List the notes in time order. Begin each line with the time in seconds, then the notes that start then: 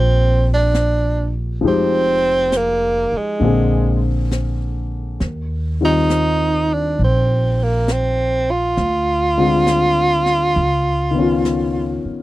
Already playing: A#1 F3 A#3 C4 D4 F4 G4
0.54 D4
0.74 snare, hi-hat pedal
1.61 F1 F3 G#3 D#4, brush sweep
1.66 C4 G4
2.52 snare, hi-hat pedal
2.57 A#3
3.12 muted upright bass stroke
3.18 G#3
3.40 A#1 D3 A#3 C4, brush sweep
3.45 G#4
4.31 snare, hi-hat pedal
5.20 D#2, brush sweep, snare
5.81 D#3 G3 C4 F4
5.85 D#4
6.09 snare, hi-hat pedal
6.74 D4
6.99 A#1, brush sweep
7.04 C4
7.63 A#3
7.88 snare, hi-hat pedal
7.92 C4
8.51 F4
8.77 D2, brush sweep, snare
9.37 D3 G#3 C4 F4
9.67 snare, hi-hat pedal
10.26 snare
10.56 C#2, brush sweep
11.11 D#3 B3
11.18 C#4 F4
11.45 snare, hi-hat pedal
12.05 muted upright bass stroke